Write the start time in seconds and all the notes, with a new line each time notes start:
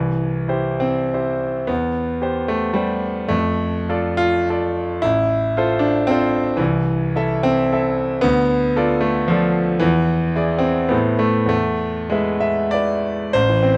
Already playing: C2 E3
0.48 E4 G4 C5
0.80 C4
1.14 E4 G4 C5
1.67 E2 B3
2.22 G4 C5
2.48 A3
2.74 G3 G4 C5
3.28 F2 A3
3.89 F4 A4 D5
4.17 F4
4.50 F4 A4 D5
5.02 A1 E4
5.57 F4 A4 C5
5.79 D4
6.07 C4 F4 A4
6.11 C5
6.57 C2 E3
7.16 E4 A4 E5
7.43 C4
7.72 E4 A4 E5
8.21 D2 B3
8.76 F4 A4 D5
9.01 A3
9.28 F3 F4 A4 D5
9.79 E2 E3
10.36 E4 G#4 D5
10.58 C4
10.89 A2 B3 E4 A4 C5
11.19 A3
11.46 E2 A3
12.10 G#3 E4 B4 E5
12.40 E5
12.71 E4 B4 D5 E5
13.33 A1 C5
13.49 E3
13.63 C4